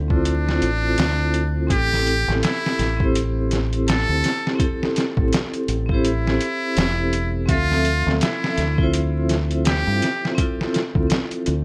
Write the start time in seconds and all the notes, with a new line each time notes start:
Already playing: D2 C4 E4 F4 A4
0.08 C4 D4 E4, kick
0.13 F4 C5
0.25 closed hi-hat
0.49 snare
0.62 A1, closed hi-hat
0.98 D2, snare, closed hi-hat
1.34 closed hi-hat
1.67 A1 C4 E4 G4, kick, closed hi-hat
1.72 G4 A4
1.93 snare
2.07 closed hi-hat
2.28 A1, snare
2.43 E4, snare, closed hi-hat
2.66 snare
2.79 A1, snare, closed hi-hat
2.96 C4 E4, kick
3.02 G4 C5
3.15 closed hi-hat
3.51 snare, closed hi-hat
3.73 closed hi-hat
3.88 A4, snare, closed hi-hat
4.09 D2
4.24 snare, closed hi-hat
4.47 snare
4.56 C4 E4, kick
4.60 G4, closed hi-hat
4.64 A4
4.83 snare
4.96 snare, closed hi-hat
5.17 A1, kick
5.33 snare, closed hi-hat
5.54 closed hi-hat
5.68 A1, closed hi-hat
5.86 C4 E4, kick
5.91 G4 C5
6.05 closed hi-hat
6.27 snare
6.41 closed hi-hat
6.77 E1, snare, closed hi-hat
7.13 closed hi-hat
7.46 D2 C4 F4 E5, kick, closed hi-hat
7.51 F3 A4
7.72 snare
7.85 closed hi-hat
8.07 D2, snare
8.21 E4, snare, closed hi-hat
8.44 snare
8.58 D2, snare, closed hi-hat
8.75 C4 E4, kick
8.80 F4 C5
8.94 closed hi-hat
9.29 snare, closed hi-hat
9.51 closed hi-hat
9.65 G4, snare, closed hi-hat
9.87 G2
10.02 snare, closed hi-hat
10.25 snare
10.35 C4 E4, kick, closed hi-hat
10.40 F4 A4
10.61 snare
10.74 snare, closed hi-hat
10.95 D2, kick
11.10 snare, closed hi-hat
11.31 closed hi-hat
11.46 D2, closed hi-hat